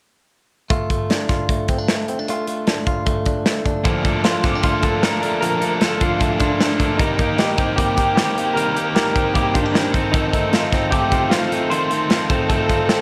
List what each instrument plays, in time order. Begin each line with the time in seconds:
0.70 clean electric guitar A3 F4, kick, closed hi-hat
0.90 clean electric guitar A3, kick, closed hi-hat
1.10 clean electric guitar D4, snare, closed hi-hat
1.29 clean electric guitar F4, kick, snare, closed hi-hat
1.49 clean electric guitar A3, kick, closed hi-hat
1.68 clean electric guitar C4, kick, closed hi-hat
1.78 clean electric guitar D4
1.88 clean electric guitar A3, snare, closed hi-hat
2.08 clean electric guitar C4, closed hi-hat
2.19 clean electric guitar D4
2.28 clean electric guitar A3 F4, closed hi-hat
2.48 clean electric guitar A3, closed hi-hat
2.67 clean electric guitar D4, snare, closed hi-hat
2.87 clean electric guitar F4, kick, closed hi-hat
3.06 clean electric guitar A3, kick, closed hi-hat
3.26 clean electric guitar D4, kick, closed hi-hat
3.46 clean electric guitar A3, snare, closed hi-hat
3.66 clean electric guitar D4, kick, closed hi-hat
3.84 overdriven electric guitar A#2 D3 F3 A#3 D4 A4, clean electric guitar F3, kick, closed hi-hat
4.03 overdriven electric guitar F3 A#3 D4 A4, clean electric guitar A3, kick, closed hi-hat
4.23 overdriven electric guitar F3 A#3 D4 A4, clean electric guitar F4, snare, closed hi-hat
4.43 overdriven electric guitar F3 A#3 D4 A4, clean electric guitar C4 G4, kick, snare, closed hi-hat
4.55 clean electric guitar D4
4.63 overdriven electric guitar A#2 D3 F3 A#3 D4 A4, clean electric guitar A3 F4, kick, closed hi-hat
4.82 overdriven electric guitar F3 A#3 D4 A4, clean electric guitar F4 A4, kick, closed hi-hat
5.02 overdriven electric guitar F3 A#3 D4 A4, clean electric guitar D4 A#4, snare, closed hi-hat
5.21 overdriven electric guitar F3 A#3 D4 A4, clean electric guitar A3, closed hi-hat
5.41 overdriven electric guitar A#2 D3 F3 A#3 D4 A4, clean electric guitar F3 A#4, closed hi-hat
5.61 overdriven electric guitar F3 A#3 D4 A4, clean electric guitar A3, closed hi-hat
5.80 overdriven electric guitar F3 A#3 D4 A4, clean electric guitar F4 A4, snare, closed hi-hat
6.00 overdriven electric guitar F3 A#3 D4 A4, clean electric guitar D4 F4, kick, closed hi-hat
6.19 overdriven electric guitar A#2 D3 F3 A#3 D4 A4, clean electric guitar A3, kick, closed hi-hat
6.39 overdriven electric guitar F3 A#3 D4 A4, clean electric guitar D4 F4, kick, closed hi-hat
6.59 overdriven electric guitar F3 A#3 D4 A4, clean electric guitar D4, snare, closed hi-hat
6.79 overdriven electric guitar F3 A#3 D4 A4, clean electric guitar A3, kick, closed hi-hat
6.97 overdriven electric guitar C3 G3 A#3 D#4, clean electric guitar D#3 D#4, kick, closed hi-hat
7.02 overdriven electric guitar G4
7.19 clean electric guitar A#3, overdriven electric guitar A#3 D#4 G4, kick, closed hi-hat
7.36 overdriven electric guitar G3 A#3, clean electric guitar D#4 G4, snare, closed hi-hat
7.41 overdriven electric guitar D#4 G4
7.58 overdriven electric guitar A#3 D#4 G4, clean electric guitar C4, kick, closed hi-hat
7.76 overdriven electric guitar C3 G3 A#3 D#4 G4, clean electric guitar A#3 G4, kick, closed hi-hat
7.96 overdriven electric guitar A#3 D#4 G4, clean electric guitar G4, kick, closed hi-hat
8.15 overdriven electric guitar G3 A#3 D#4, clean electric guitar C4 G4, snare, closed hi-hat
8.20 overdriven electric guitar G4
8.36 clean electric guitar A#3, overdriven electric guitar A#3 D#4 G4, closed hi-hat
8.54 overdriven electric guitar C3 G3 A#3 G4, clean electric guitar D#3 A#4, closed hi-hat
8.58 overdriven electric guitar D#4
8.76 clean electric guitar A#3, overdriven electric guitar A#3 D#4 G4, closed hi-hat
8.95 overdriven electric guitar G3 A#3 D#4 G4, clean electric guitar G4 A#4, snare, closed hi-hat
9.14 overdriven electric guitar A#3 D#4 G4, clean electric guitar C4, kick, closed hi-hat
9.33 overdriven electric guitar C3 G3 A#3 D#4 G4, clean electric guitar A#3 G4, kick, closed hi-hat
9.53 overdriven electric guitar A#3 D#4 G4, clean electric guitar D4 F4, kick, closed hi-hat
9.66 clean electric guitar G4
9.72 overdriven electric guitar G3 A#3 D#4 G4, clean electric guitar C4, snare, closed hi-hat
9.92 clean electric guitar D#3, overdriven electric guitar C4 D#4 A4, kick, closed hi-hat
10.12 clean electric guitar D#3 D#4, overdriven electric guitar F3 C4 D#4 A4, kick, closed hi-hat
10.32 clean electric guitar A3, overdriven electric guitar C4 D#4 A4, kick, closed hi-hat
10.51 overdriven electric guitar F3 C4 D#4 A4, clean electric guitar D#4 F4, snare, closed hi-hat
10.70 clean electric guitar C4, overdriven electric guitar C4 D#4 A4, kick, snare, closed hi-hat
10.91 overdriven electric guitar F3 C4 D#4 A4, clean electric guitar A3 G4, kick, closed hi-hat
11.10 overdriven electric guitar C4 D#4 A4, clean electric guitar F4, kick, closed hi-hat
11.30 overdriven electric guitar F3 C4 D#4 A4, clean electric guitar C4 F4, snare, closed hi-hat
11.48 clean electric guitar A3, overdriven electric guitar C4 D#4 A4, closed hi-hat
11.69 clean electric guitar D#3 C5, overdriven electric guitar F3 C4 D#4 A4, closed hi-hat
11.89 clean electric guitar A3, overdriven electric guitar C4 D#4 A4, closed hi-hat
12.08 overdriven electric guitar F3 C4 D#4 A4, clean electric guitar F4, snare, closed hi-hat
12.28 clean electric guitar C4 A4, overdriven electric guitar C4 D#4 A4, kick, closed hi-hat
12.48 overdriven electric guitar F3 C4 D#4 A4, clean electric guitar A3 A4, kick, closed hi-hat
12.68 overdriven electric guitar C4 D#4 A4, clean electric guitar F4, kick, closed hi-hat
12.88 overdriven electric guitar F3 C4 D#4 A4, clean electric guitar C4, snare, closed hi-hat